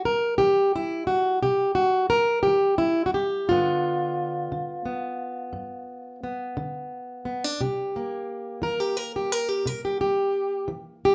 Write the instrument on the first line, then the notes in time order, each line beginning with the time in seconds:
steel-string acoustic guitar
0.05 A#4
0.38 E3 G4
0.76 E4
1.07 F#4
1.43 C3 G4
1.75 F#4
2.10 A#4
2.43 G4
2.47 E3
2.78 E4
3.06 F#4
3.14 G4
3.49 G2 D3 B3 F4
4.52 D3
4.86 B3
5.53 G2
6.24 B3
6.57 D3
7.25 B3
7.44 D4
7.61 C3 G4
7.96 A#3
8.62 E3 A#4
8.80 G4
8.97 A#4
9.16 G4
9.32 A#4
9.49 G4
9.66 C3 A#4
9.85 G4
10.01 G4
10.68 E3
11.05 G4